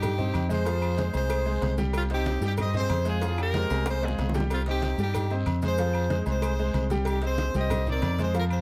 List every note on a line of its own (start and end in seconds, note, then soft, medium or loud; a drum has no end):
0.00 0.31 G2 loud
0.00 0.13 G3 medium
0.00 0.47 D#4 medium
0.00 0.13 G4 medium
0.00 0.47 G4 loud
0.00 0.13 G5 medium
0.00 cowbell loud
0.00 high conga soft
0.00 low conga medium
0.00 low agogo loud
0.00 long guiro medium
0.00 claves medium
0.00 maracas loud
0.18 0.44 C4 medium
0.18 0.45 C5 medium
0.18 0.45 D#5 medium
0.18 high conga soft
0.18 low conga medium
0.18 low agogo medium
0.18 maracas soft
0.34 1.09 F2 loud
0.34 cowbell medium
0.34 high conga medium
0.34 low agogo loud
0.34 short guiro medium
0.34 claves medium
0.34 maracas soft
0.49 0.63 G#3 medium
0.49 0.63 G#4 medium
0.49 1.11 G#4 medium
0.49 0.64 C5 medium
0.49 1.11 C5 loud
0.49 cowbell medium
0.49 high conga medium
0.49 short guiro medium
0.49 maracas medium
0.65 0.92 F3 medium
0.65 0.92 F4 medium
0.65 0.92 F5 medium
0.65 cowbell loud
0.65 low agogo medium
0.65 long guiro medium
0.65 maracas medium
0.82 high conga soft
0.82 low agogo loud
0.82 claves medium
0.82 maracas soft
0.97 1.11 G#3 medium
0.97 1.11 G#4 medium
0.97 1.11 C5 medium
0.97 cowbell medium
0.97 high conga loud
0.97 short guiro medium
0.97 maracas soft
1.14 1.59 C2 loud
1.14 1.40 G#3 medium
1.14 1.40 G#4 medium
1.14 1.74 G#4 medium
1.14 1.41 C5 medium
1.14 1.75 C5 loud
1.14 high conga soft
1.14 low agogo medium
1.14 short guiro medium
1.14 maracas medium
1.30 cowbell loud
1.30 high conga soft
1.30 low agogo loud
1.30 long guiro medium
1.30 claves medium
1.30 maracas loud
1.45 1.72 G#3 medium
1.45 1.72 G#4 medium
1.45 1.73 C5 medium
1.45 high conga soft
1.45 maracas soft
1.61 2.37 C2 loud
1.61 cowbell medium
1.61 high conga medium
1.61 low timbale medium
1.61 low agogo medium
1.61 short guiro medium
1.61 maracas soft
1.78 2.04 G3 medium
1.78 2.05 G4 loud
1.78 2.05 G5 loud
1.78 cowbell medium
1.78 high conga medium
1.78 short guiro medium
1.78 maracas medium
1.93 2.02 C4 medium
1.93 2.03 F4 loud
1.93 cowbell loud
1.93 high conga soft
1.93 low agogo loud
1.93 long guiro medium
1.93 claves medium
1.93 maracas loud
2.10 2.37 C4 medium
2.10 2.41 D#4 medium
2.10 2.41 G4 loud
2.10 2.37 C5 medium
2.10 2.37 D#5 medium
2.10 cowbell medium
2.10 high conga soft
2.10 maracas soft
2.26 cowbell medium
2.26 high conga loud
2.26 low agogo medium
2.26 short guiro medium
2.26 maracas soft
2.41 2.86 G2 loud
2.41 2.68 G3 medium
2.41 2.50 D#4 medium
2.41 2.69 G4 medium
2.41 2.52 G4 loud
2.41 2.69 G5 medium
2.41 short guiro medium
2.41 maracas medium
2.57 2.74 C5 medium
2.57 2.75 D#5 loud
2.57 cowbell loud
2.57 high conga soft
2.57 low conga medium
2.57 low agogo loud
2.57 long guiro medium
2.57 claves medium
2.57 maracas medium
2.74 3.01 C4 medium
2.74 3.05 G#4 medium
2.74 3.01 C5 medium
2.74 3.06 C5 loud
2.74 3.01 D#5 medium
2.74 high conga soft
2.74 low conga medium
2.74 low agogo medium
2.74 maracas soft
2.89 3.64 F2 loud
2.89 cowbell medium
2.89 high conga medium
2.89 low timbale medium
2.89 low agogo loud
2.89 short guiro medium
2.89 claves medium
2.89 maracas soft
3.05 3.19 G#3 medium
3.05 3.37 F4 medium
3.05 3.19 G#4 medium
3.05 3.37 G#4 loud
3.05 3.19 C5 medium
3.05 cowbell medium
3.05 short guiro medium
3.05 maracas medium
3.21 3.48 F3 medium
3.21 3.49 F4 medium
3.21 3.49 F5 medium
3.21 cowbell loud
3.21 high conga soft
3.21 high timbale medium
3.21 low agogo medium
3.21 long guiro medium
3.21 maracas medium
3.38 3.84 G4 medium
3.38 3.84 A#4 loud
3.38 high conga soft
3.38 high timbale medium
3.38 low agogo loud
3.38 claves medium
3.38 maracas soft
3.54 3.67 G#3 medium
3.54 3.68 G#4 medium
3.54 3.68 C5 medium
3.54 cowbell medium
3.54 high conga loud
3.54 high timbale loud
3.54 short guiro medium
3.54 maracas soft
3.70 4.15 C2 loud
3.70 3.97 G#3 medium
3.70 3.97 G#4 medium
3.70 3.97 C5 medium
3.70 high conga soft
3.70 low timbale medium
3.70 low agogo medium
3.70 short guiro medium
3.70 maracas medium
3.86 4.02 G#4 medium
3.86 4.02 C5 loud
3.86 cowbell loud
3.86 high bongo loud
3.86 high conga soft
3.86 low timbale medium
3.86 low agogo loud
3.86 long guiro medium
3.86 claves medium
3.86 maracas medium
4.02 4.29 G#3 medium
4.02 4.35 F4 medium
4.02 4.29 G#4 medium
4.02 4.35 G#4 medium
4.02 4.29 C5 medium
4.02 high conga soft
4.02 low timbale loud
4.02 maracas soft
4.08 low bongo medium
4.18 4.93 C2 loud
4.18 cowbell medium
4.18 high conga medium
4.18 low timbale medium
4.18 low agogo medium
4.18 short guiro medium
4.18 maracas soft
4.29 low bongo loud
4.34 4.61 G3 loud
4.34 4.61 G4 loud
4.34 4.61 G5 medium
4.34 cowbell medium
4.34 high conga medium
4.34 low timbale loud
4.34 short guiro medium
4.34 maracas medium
4.40 low bongo medium
4.50 4.59 C4 medium
4.50 4.60 F4 loud
4.50 cowbell loud
4.50 low agogo loud
4.50 long guiro medium
4.50 claves medium
4.50 maracas medium
4.66 4.93 C4 medium
4.66 4.97 D#4 medium
4.66 4.98 G4 loud
4.66 4.93 C5 medium
4.66 4.93 D#5 medium
4.66 cowbell medium
4.66 high conga soft
4.66 maracas soft
4.82 cowbell medium
4.82 high conga loud
4.82 low agogo medium
4.82 short guiro medium
4.82 maracas soft
4.98 5.43 G2 loud
4.98 5.25 G3 medium
4.98 5.34 D#4 medium
4.98 5.25 G4 medium
4.98 5.34 G4 loud
4.98 5.26 G5 medium
4.98 short guiro medium
4.98 maracas medium
5.14 cowbell loud
5.14 high conga soft
5.14 low conga loud
5.14 low agogo loud
5.14 long guiro medium
5.14 claves medium
5.14 maracas loud
5.30 5.57 C4 medium
5.30 5.57 C5 medium
5.30 5.57 D#5 medium
5.30 high conga soft
5.30 low agogo medium
5.30 maracas soft
5.46 6.21 F2 loud
5.46 cowbell medium
5.46 high conga medium
5.46 low agogo loud
5.46 short guiro medium
5.46 claves medium
5.46 maracas soft
5.62 5.76 G#3 medium
5.62 5.76 G#4 medium
5.62 6.24 G#4 medium
5.62 5.76 C5 medium
5.62 6.24 C5 loud
5.62 cowbell medium
5.62 high conga medium
5.62 short guiro medium
5.62 maracas medium
5.78 6.05 F3 medium
5.78 6.05 F4 medium
5.78 6.05 F5 medium
5.78 cowbell loud
5.78 low agogo medium
5.78 long guiro medium
5.78 maracas medium
5.94 high conga soft
5.94 low agogo loud
5.94 claves medium
5.94 maracas soft
6.10 6.23 G#3 medium
6.10 6.23 G#4 medium
6.10 6.24 C5 medium
6.10 cowbell medium
6.10 high conga loud
6.10 short guiro medium
6.10 maracas soft
6.26 6.71 C2 loud
6.26 6.53 G#3 medium
6.26 6.53 G#4 medium
6.26 6.87 G#4 medium
6.26 6.53 C5 medium
6.26 6.88 C5 loud
6.26 high conga soft
6.26 low agogo medium
6.26 short guiro medium
6.26 maracas medium
6.42 cowbell loud
6.42 high conga soft
6.42 low agogo loud
6.42 long guiro medium
6.42 claves medium
6.42 maracas medium
6.58 6.85 G#3 medium
6.58 6.85 G#4 medium
6.58 6.86 C5 medium
6.58 high conga soft
6.58 maracas soft
6.74 7.49 C2 loud
6.74 cowbell medium
6.74 high conga medium
6.74 low agogo medium
6.74 short guiro medium
6.74 maracas soft
6.90 7.17 G3 loud
6.90 7.17 G4 loud
6.90 7.17 G5 loud
6.90 cowbell medium
6.90 high conga medium
6.90 short guiro medium
6.90 maracas medium
7.05 7.22 D#4 medium
7.05 7.22 G4 loud
7.05 cowbell loud
7.05 high conga soft
7.05 low agogo loud
7.05 long guiro medium
7.05 claves medium
7.05 maracas medium
7.22 7.49 C4 medium
7.22 7.53 G#4 medium
7.22 7.49 C5 medium
7.22 7.53 C5 loud
7.22 7.49 D#5 medium
7.22 cowbell medium
7.22 high conga soft
7.22 maracas soft
7.38 cowbell medium
7.38 high conga loud
7.38 low agogo medium
7.38 short guiro medium
7.38 maracas soft
7.54 7.99 C2 loud
7.54 7.81 G3 medium
7.54 7.81 G4 medium
7.54 7.88 C5 medium
7.54 7.88 D#5 loud
7.54 7.82 G5 medium
7.54 short guiro medium
7.54 maracas medium
7.70 cowbell loud
7.70 high conga soft
7.70 low conga loud
7.70 low agogo loud
7.70 long guiro medium
7.70 claves medium
7.70 maracas medium
7.87 8.13 C4 medium
7.87 8.14 D#4 medium
7.87 8.18 A#4 medium
7.87 8.13 C5 medium
7.87 8.18 D5 loud
7.87 high conga soft
7.87 low conga medium
7.87 low agogo medium
7.87 maracas soft
8.02 8.61 F2 loud
8.02 cowbell medium
8.02 high conga medium
8.02 low timbale medium
8.02 low agogo loud
8.02 short guiro medium
8.02 claves medium
8.02 maracas soft
8.18 8.32 G#3 medium
8.18 8.32 G#4 medium
8.18 8.35 G#4 medium
8.18 8.33 C5 medium
8.18 8.35 C5 loud
8.18 cowbell medium
8.18 high conga medium
8.18 short guiro medium
8.18 maracas medium
8.34 8.61 F3 medium
8.34 8.61 F4 medium
8.34 8.43 F4 medium
8.34 8.44 A#4 loud
8.34 8.61 F5 medium
8.34 cowbell loud
8.34 high conga soft
8.34 low agogo medium
8.34 long guiro medium
8.34 maracas medium
8.50 8.61 G#4 medium
8.50 8.61 C5 loud
8.50 high conga soft
8.50 low agogo loud
8.50 claves medium
8.50 maracas soft